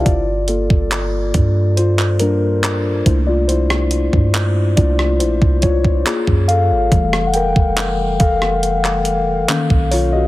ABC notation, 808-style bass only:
X:1
M:4/4
L:1/16
Q:1/4=70
K:Gdor
V:1 name="808-style bass" clef=bass
G,,,3 G,,,3 G,,8 C,,2- | C,,3 G,,3 C,,2 B,,, C,,3 z _G,,2 _A,,, | F,,,3 F,,,3 F,,,6 z =B,,,3 |]